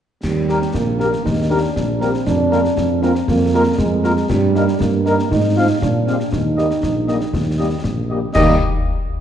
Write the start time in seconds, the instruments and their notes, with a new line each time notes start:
0.23 tuba D#2, euphonium G3, concert bass drum, snare, crash
0.49 french horn section G3 A#3 G4, trumpet section A#4, snare
0.62 snare
0.72 tuba A#1, euphonium A#3, concert bass drum, snare
0.99 french horn section G3 A#3 G4, trumpet section A#4, snare
1.13 snare
1.24 tuba D#2, euphonium D#4, concert bass drum, snare
1.50 french horn section G3 A#3 G4, euphonium D4, trumpet section A#4
1.75 tuba A#1, concert bass drum, snare
2.00 french horn section G3 A#3 G4, euphonium C4, trumpet section A#4, snare
2.14 snare
2.26 tuba F2, euphonium D4, concert bass drum, snare
2.51 french horn section G#3 A#3 F4, trumpet section A#4, snare
2.65 snare
2.77 tuba F2, concert bass drum, snare
3.02 french horn section G#3 A#3 F4, euphonium C4, trumpet section A#4, snare
3.15 snare
3.28 tuba F2, euphonium A#3, concert bass drum, snare
3.53 french horn section G#3 A#3 F4, trumpet section A#4
3.78 tuba F2, euphonium G#3, concert bass drum, snare
4.04 french horn section G#3 A#3 F4, trumpet section A#4, snare
4.17 snare
4.29 tuba G2, euphonium G3, concert bass drum, snare, crash
4.55 french horn section G3 A#3 D#4, trumpet section A#4, snare
4.68 snare
4.80 tuba G2, euphonium A#3, concert bass drum, snare
5.05 french horn section G3 A#3 D#4, trumpet section A#4, snare
5.19 snare
5.31 tuba G#2, euphonium D#4, concert bass drum, snare
5.57 french horn section F3 C4 F4, trumpet section F5
5.81 tuba A#2, euphonium D4, concert bass drum, snare
6.06 french horn section G#3 C4 G4, trumpet section F5, snare
6.20 snare
6.32 tuba D#2, euphonium D#4, concert bass drum, snare
6.57 french horn section G3 A#3 G4, trumpet section D#5, snare
6.71 snare
6.83 tuba A#1, concert bass drum, snare
7.08 french horn section G3 A#3 G4, trumpet section D#5, snare
7.21 snare
7.33 tuba D#2, concert bass drum, snare
7.58 french horn section G3 A#3 G4, trumpet section D#5
7.84 tuba A#1, concert bass drum, snare
8.09 french horn section G3 A#3 G4, trumpet section D#5
8.34 tuba D#2, french horn section G3 A#3 G4, euphonium D#4, trumpet section D#5, concert bass drum, snare, crash